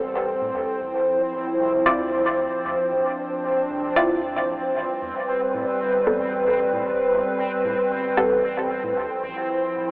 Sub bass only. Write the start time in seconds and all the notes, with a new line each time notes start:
Already playing: A1
0.41 A2
0.54 D2
0.81 A1
1.33 D1
1.59 C2
1.86 D2
2.52 D1
2.65 D2
2.91 A1
3.44 D1
3.70 C2
3.96 D2
4.36 A1
4.49 A1
4.75 A1
5.02 E2
5.54 A2
5.81 G1
6.07 A1
6.73 A2
6.86 A1
7.12 E2
7.65 A2
7.91 G1
8.17 A1
8.83 A2
8.96 D2
9.23 A1
9.75 D1